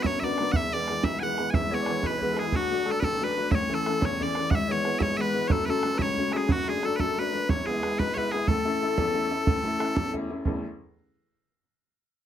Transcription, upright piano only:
Already playing: F#1 D3 F#3 B3
0.04 F#2
0.23 D3 F#3 B3
0.39 D3 F#3 B3
0.55 E1 E2
0.73 E3 G#3 B3
0.89 E3 G#3 B3
1.04 B1
1.22 E3 G#3 B3
1.37 E3 G#3 B3
1.53 E1 E2
1.71 E3 G#3 B3
1.87 E3 G#3 B3
2.03 B1
2.21 E3 G#3 B3
2.37 E3 G#3 B3
2.53 D1 D2
2.71 F#3 A3 D4
2.86 F#3 A3 D4
3.03 A1
3.20 F#3 A3 D4
3.37 F#3 A3 D4
3.52 A1 A2
3.69 E3 A3 C#4
3.86 E3 A3 C#4
4.01 E2
4.19 C#3 E3 A3
4.36 E3 A3 C#4
4.51 G#1 G#2
4.69 E3 G#3 B3
4.84 E3 G#3 B3
5.00 G#2
5.17 E3 G#3 B3
5.34 E3 G#3 B3
5.50 F#1 F#2
5.68 F#3 A3 C#4
5.84 F#3 A3 C#4
5.99 C#2
6.18 F#3 A3 C#4
6.34 F#3 A3 C#4
6.49 F#1 F#2
6.67 F#3 A3 D4
6.83 F#3 A3 D4
6.99 F#2
7.18 F#3 A3 D4
7.33 F#3 A3 D4
7.48 E1 E2
7.66 G#3 B3 E4
7.83 G#3 B3 E4
7.98 B1
8.15 G#3 B3 E4
8.32 G#3 B3 E4
8.48 A1 A2
8.65 A3 C#4 E4
8.81 A3 C#4 E4
8.97 E2
9.15 A3 C#4 E4
9.30 A3 C#4 E4
9.47 A1 A2
9.64 A3 C#4 E4
9.79 A3 C#4 E4
9.95 E2
10.13 A3 C#4 E4
10.30 A3 C#4 E4
10.45 A1 E2 C#3 A3 E4 A4

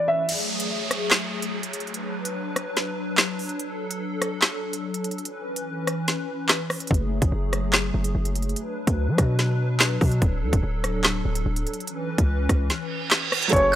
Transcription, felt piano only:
Already playing: E3 B3 G#4 C#5
13.48 F#3 A3
13.52 C#4 G#4
13.56 C#5

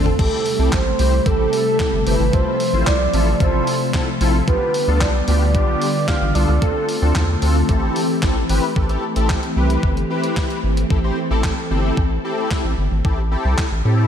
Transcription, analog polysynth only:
0.19 C4 E4 G4 A4
0.59 C4 E4 G4 A4
0.99 C4 E4 G4 C5
1.26 C4 E4 G4 A4
1.80 C4 E4 G4 A4
2.06 C4 E4 G4 A4
2.33 C4 E4 F4 A4
2.73 C4 E4 F4 C5
3.13 C4 E4 F4 A4
3.40 C4 E4 F4 A4
3.94 C4 E4 F4 A4
4.21 C4 E4 F4 A4
4.48 B3 D4 F4 G4
4.87 B3 D4 F4 A4
5.28 B3 D4 F4 G4
5.55 B3 D4 F4 G4
6.08 B3 D4 F4 G4
6.35 B3 D4 F4 A4
6.62 C4 D4 F4 A4
7.02 C4 D4 F4 A4
7.42 C4 D4 F4 A4
7.69 C4 E4 G4 A4
8.22 C4 E4 G4 A4
8.49 C4 E4 G4 B4
8.76 C4 E4 G4 A4
8.89 C4 E4 G4 A4
9.16 C4 E4 G4 A4
9.56 C4 E4 G4 B4
10.10 C4 E4 G4 B4
10.90 C4 E4 G4 A4
11.04 C4 E4 G4 C5
11.30 C4 E4 G4 A4
11.71 C4 E4 G4 A4
12.24 C4 E4 G4 A4
13.04 C4 E4 G4 A4
13.31 C4 E4 G4 A4
13.85 C4 E4 G4 A4

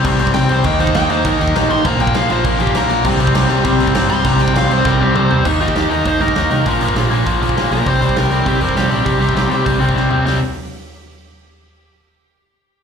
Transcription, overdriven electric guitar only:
0.05 C3 G3 C4
0.20 C3 G3 C4
0.35 C3 G3 C4
0.50 C3 G3 C4
0.65 D#3 A#3 D#4
0.80 D#3 A#3 D#4
0.95 D#3 A#3 D#4
1.09 D#3 A#3 D#4
1.25 D#3 A#3 D#4
1.39 D#3 A#3 D#4
1.55 D#3 A#3 D#4
1.70 D#3 A#3 D#4
1.84 A#2 F3 A#3
2.00 A#2 F3 A#3
2.15 A#2 F3 A#3
2.30 A#2 F3 A#3
2.45 A#2 F3 A#3
2.59 A#2 F3 A#3
2.75 A#2 F3 A#3
2.89 A#2 F3 A#3
3.05 C3 G3 C4
3.20 C3 G3 C4
3.35 C3 G3 C4
3.49 C3 G3 C4
3.64 C3 G3 C4
3.79 C3 G3 C4
3.94 C3 G3 C4
4.09 C3 G3 C4
4.24 C3 G3 C4
4.39 C3 G3 C4
4.54 C3 G3 C4
4.69 C3 G3 C4
4.85 C3 G3 C4
5.00 C3 G3 C4
5.15 C3 G3 C4
5.30 C3 G3 C4
5.45 D#3 A#3 D#4
5.60 D#3 A#3 D#4
5.76 D#3 A#3 D#4
5.91 D#3 A#3 D#4
6.05 D#3 A#3 D#4
6.21 D#3 A#3 D#4
6.35 D#3 A#3 D#4
6.51 D#3 A#3 D#4
6.66 A#2 F3 A#3
6.81 A#2 F3 A#3
6.96 A#2 F3 A#3
7.11 A#2 F3 A#3
7.26 A#2 F3 A#3
7.41 A#2 F3 A#3
7.56 A#2 F3 A#3
7.71 A#2 F3 A#3
7.87 C3 G3 C4
8.01 C3 G3 C4
8.16 C3 G3 C4
8.31 C3 G3 C4
8.46 C3 G3 C4
8.61 C3 G3 C4
8.76 C3 G3 C4
8.90 C3 G3 C4
9.05 C3 G3 C4
9.19 C3 G3 C4
9.34 C3 G3 C4
9.50 C3 G3 C4
9.64 C3 G3 C4
9.80 C3 G3 C4
9.94 C3 G3 C4
10.10 C3 G3 C4
10.24 C3 G3 C4

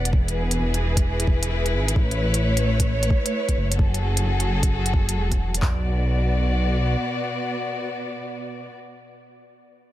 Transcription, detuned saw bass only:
Already playing: E1
0.59 E1
1.73 G#1
1.96 A1
3.56 F#1
4.26 F#1
5.16 E1
5.62 B1

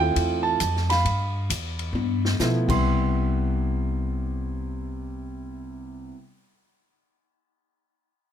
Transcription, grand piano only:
0.00 A3 C4 E4 F4 G5
0.43 A5
0.90 F5 B5
2.40 F3 A3 B3 E4
2.67 C3 G3 B3 E4 C6

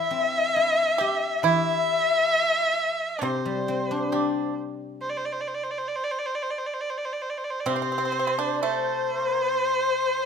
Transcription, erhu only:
Already playing: E5
1.44 E5
3.24 C5
5.02 C5
5.10 D5
5.17 C5
5.25 D5
5.32 C5
5.41 D5
5.48 C5
5.55 D5
5.63 C5
5.71 D5
5.78 C5
5.88 D5
5.96 C5
6.04 D5
6.11 C5
6.19 D5
6.26 C5
6.35 D5
6.43 C5
6.50 D5
6.58 C5
6.66 D5
6.74 C5
6.81 D5
6.90 C5
6.98 D5
7.05 C5
7.13 D5
7.22 C5
7.30 D5
7.38 C5
7.44 D5
7.50 C5
7.60 D5
7.67 C5
8.61 C5

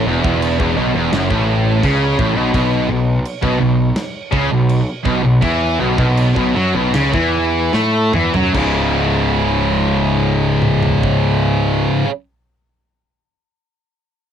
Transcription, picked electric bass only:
0.06 E1
0.24 E1
0.60 E1
0.77 B1
0.95 E1
1.12 F#1
1.31 A1
1.84 C#2
2.19 A1
2.36 B1
2.54 B1
2.90 B1
3.43 B1
3.60 B1
4.32 C#2
4.52 B1
5.06 B1
5.25 B1
5.43 E2
5.80 B1
5.98 B1
6.37 B1
6.56 F#2
6.75 B1
6.94 C#2
7.14 E2
7.74 A2
8.14 E2
8.35 F#2
8.55 C#1

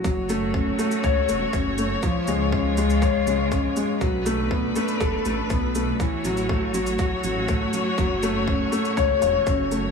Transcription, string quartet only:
0.05 A3 F#4 C#5
2.03 G#3 F4
4.02 A3 D4 B4
6.00 F#4 C#5

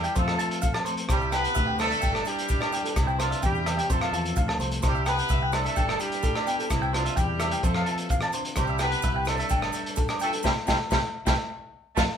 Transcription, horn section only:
Already playing: G3 E4 G4
0.18 A3 F4 A4
1.10 G3 E4 G4
1.33 B3 G4 B4
1.81 A3 D4 A4
2.26 G3 E4 G4
2.99 E3 C4 E4
3.21 F3 D4 F4
3.44 G3 E4 G4
3.91 A3 F4 A4
4.84 G3 E4 G4
5.07 B3 G4 B4
5.53 A3 D4 A4
5.98 G3 E4 G4
6.70 E3 C4 E4
6.92 F3 D4 F4
7.16 G3 E4 G4
7.62 A3 F4 A4
8.57 G3 E4 G4
8.81 B3 G4 B4
9.28 A3 D4 A4
10.22 A3 F4 A4
10.44 G3 C4 E4 G4
10.68 G3 C4 E4 G4
10.91 G3 C4 E4 G4
11.26 G3 C4 E4 G4
11.96 A3 C4 F4 A4

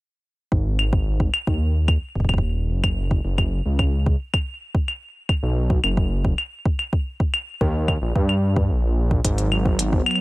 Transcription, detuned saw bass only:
0.52 G#1
1.47 D#2
2.15 D#1
2.70 F#1
3.25 F#1
3.65 C#2
5.43 B1
5.84 F#1
7.61 D#2
8.02 A#1
8.15 G2
8.70 A#1
9.25 G#1

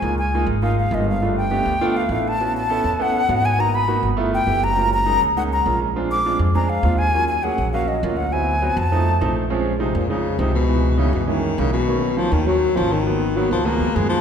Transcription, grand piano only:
0.04 G#3 A#3 D#4 F4
0.35 G#3 A#3 D#4 F4
0.62 G#3 A#3 D#4 F4
0.92 G#3 A#3 D#4 F4
1.22 A3 B3 D4 F4
1.51 A3 B3 D4 G4
1.81 A3 B3 D4 F4
2.11 A3 B3 D4 E4
2.41 B3 C#4 E4 F#4
2.70 B3 C#4 E4 A4
2.99 B3 C#4 E4 A4
3.29 B3 C#4 E4 F#4
3.59 A#3 B3 D#4 F#4
3.88 A#3 B3 D#4 F#4
4.17 A3 B3 E4 F4
4.46 A3 B3 E4 G4
4.76 G#3 A#3 C#4 F4
5.06 G#3 A#3 C#4 D#4
5.37 G#3 A#3 C#4 D#4
5.66 G#3 A#3 C#4 F4
5.96 G#3 C4 D4 F4
6.26 G#3 C4 D4 F4
6.55 G#3 C4 D4 G#4
6.84 G#3 C4 D4 F4
7.14 F#3 A#3 C#4 F4
7.44 F#3 A#3 C#4 G#4
7.74 F#3 A#3 C#4 F#4
8.03 F#3 A#3 C#4 F4
8.33 F#3 B3 C4 E4
8.62 F#3 B3 C4 F#4
8.92 F3 A3 C4 D#4
9.21 F3 A3 C4 D#4
9.50 F3 G#3 C4 C#4
9.79 F3 G#3 C4 D#4
10.10 F3 G#3 C4 D#4
10.40 F3 G#3 C4 D#4
10.68 E3 G#3 B3 D#4
10.98 E3 G#3 B3 D#4
11.27 E3 G#3 A#3 C#4
11.59 E3 G#3 A#3 D#4
11.87 D#3 F#3 A#3 C#4
12.17 D#3 F#3 A#3 C#4
12.46 D#3 F#3 A#3 C#4
12.75 D#3 F#3 A#3 C#4
13.06 D#3 F#3 A#3 B3
13.36 D#3 F#3 A#3 B3
13.66 D#3 F3 G#3 B3
13.95 D#3 F3 G#3 B3

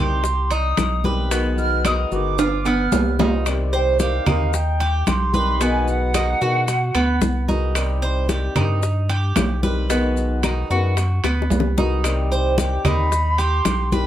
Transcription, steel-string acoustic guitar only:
Already playing: G3 C4 G4
0.00 D#3
0.24 muted steel-string acoustic guitar stroke
1.05 D#3 G3 C4 G4
1.31 B2 D#3 G#3 B3 F#4
1.85 D#3 G#3 B3 F#4
2.12 D#3 G#3 B3 F#4
2.39 muted steel-string acoustic guitar stroke
3.19 B3 F4
3.46 C3 D#3 G3 C4 G4
3.99 D#3 G3 C4 G4
4.26 D#3 G3 C4 G4
4.53 muted steel-string acoustic guitar stroke
5.33 D#3 G3 C4 G4
5.60 B2 D#3 G#3 B3 F#4
6.14 D#3 G#3 B3 F#4
6.41 D#3 G#3 B3 F#4
6.67 muted steel-string acoustic guitar stroke
7.48 D#3 G#3 B3 F#4
7.75 C3 D#3 G3 C4 G4
8.29 D#3 G3 C4 G4
8.55 D#3 G3 C4 G4
8.82 muted steel-string acoustic guitar stroke
9.63 D#3 G3 C4 G4
9.89 B2 D#3 G#3 B3 F#4
10.43 D#3 G#3 B3 F#4
10.70 D#3 G#3 B3 F#4
10.97 muted steel-string acoustic guitar stroke
11.77 D#3 G#3 B3 F#4
12.04 C3 D#3 G3 C4 G4
12.58 D#3 G3 C4 G4
12.84 D#3 G3 C4 G4
13.12 muted steel-string acoustic guitar stroke
13.92 D#3 G3 C4 G4

